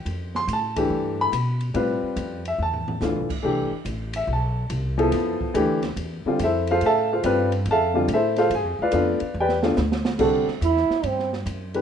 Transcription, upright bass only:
X:1
M:4/4
L:1/8
Q:"Swing" 1/4=142
K:Flyd
V:1 name="Upright bass" clef=bass
F,,2 A,,2 G,,2 B,,2 | A,, z F,,2 E,,2 (3D,, C,, A,,, | C,, z A,,,2 B,,,2 C,,2 | F,, z D,,2 E,, z F,,2 |
A,,2 G,,2 F,,2 A,,2 | (3G,, F,, D,, F,, z E,,2 D,,2 | [K:Clyd] C,, z E,, z G,,2 F,,2 |]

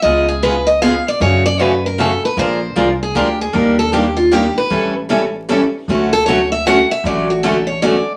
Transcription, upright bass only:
X:1
M:3/4
L:1/8
Q:"Swing" 1/4=154
K:D
V:1 name="Upright bass" clef=bass
C,,6 | F,,6 | _B,,,2 =C,,2 D,,2 | _E,,6 |
A,,,6 | D,,6 | A,,,6 |]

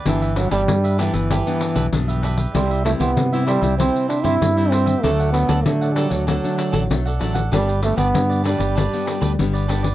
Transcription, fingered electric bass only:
X:1
M:4/4
L:1/16
Q:1/4=96
K:G
V:1 name="Fingered electric bass" clef=bass
G,,,3 G,,, G,,3 G,,,2 z2 B,,, B,,,4 | C,,3 C,, C,3 C,,2 z2 G,, G,,4 | D,,3 D,, D,3 D,,2 z2 A,,, B,,,2 A,,,2 | G,,,3 G,,, G,,3 G,,,2 z2 D,, G,,,4 |]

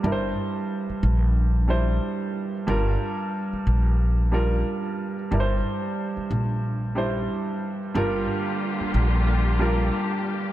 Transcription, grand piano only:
X:1
M:4/4
L:1/8
Q:"Swing 16ths" 1/4=91
K:Gdor
V:1 name="Grand piano"
[G,,G,EBc]3 z2 [G,,G,Ec]2 z | [G,,G,FB]3 z2 [G,,G,FB]2 z | [G,,G,EBc]3 z2 [G,,G,Ec]2 z | [G,,G,FB]3 z2 [G,,G,FB]2 z |]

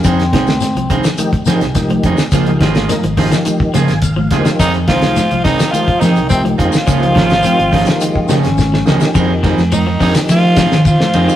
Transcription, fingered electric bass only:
X:1
M:4/4
L:1/16
Q:1/4=106
K:Fm
V:1 name="Fingered electric bass" clef=bass
F,,2 C,,2 z C,,2 z3 F, C,,3 F,, z | D,,2 A,,,2 z A,,,2 z3 D, A,,,3 D,, z | F,,2 C,,2 z C,,2 z3 F, C,,3 F,, z | D,,2 A,,,2 z A,,,2 z3 D, A,,,3 D,, z |
F,,3 F,,3 F,, z F,3 E,2 z F,, z |]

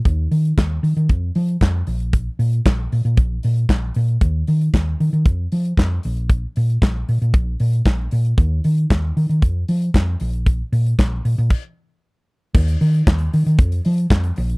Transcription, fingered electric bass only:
X:1
M:4/4
L:1/16
Q:1/4=115
K:Ebmix
V:1 name="Fingered electric bass" clef=bass
E,,2 E,2 E,,2 E, E, F,,2 F,2 F,,2 B,,,2- | B,,,2 B,,2 B,,,2 B,, B,, B,,,2 B,,2 B,,,2 B,,2 | E,,2 E,2 E,,2 E, E, F,,2 F,2 F,,2 B,,,2- | B,,,2 B,,2 B,,,2 B,, B,, B,,,2 B,,2 B,,,2 B,,2 |
E,,2 E,2 E,,2 E, E, F,,2 F,2 F,,2 B,,,2- | B,,,2 B,,2 B,,,2 B,, B,, z8 | E,,2 E,2 E,,2 E, E, F,,2 F,2 F,,2 B,,,2 |]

